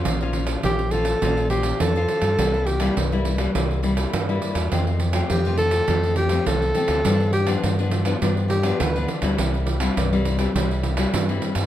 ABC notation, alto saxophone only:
X:1
M:4/4
L:1/8
Q:1/4=103
K:Cmix
V:1 name="Alto saxophone"
z2 G A2 G A2- | A G z6 | z2 G A2 G A2- | A G z3 G =B z |
z8 |]